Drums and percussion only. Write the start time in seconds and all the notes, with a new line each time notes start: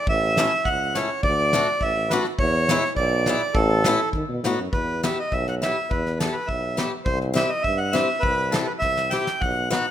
0.07 kick
0.37 snare, hi-hat pedal
0.65 kick
0.95 snare, hi-hat pedal
1.23 kick
1.53 snare, hi-hat pedal
1.81 kick
2.11 snare, hi-hat pedal
2.25 snare
2.39 kick
2.69 snare, hi-hat pedal
2.96 kick
3.26 snare, hi-hat pedal
3.55 kick
3.84 snare, hi-hat pedal
4.13 kick
4.44 snare, hi-hat pedal
4.73 kick
5.04 snare
5.32 kick
5.47 snare
5.63 snare
5.91 kick
6.06 snare
6.20 snare
6.49 kick
6.78 snare
7.06 kick
7.21 snare
7.36 snare
7.64 kick
7.95 snare
8.23 kick
8.54 snare
8.82 kick, snare
8.97 snare
9.12 snare
9.27 snare
9.42 kick
9.72 snare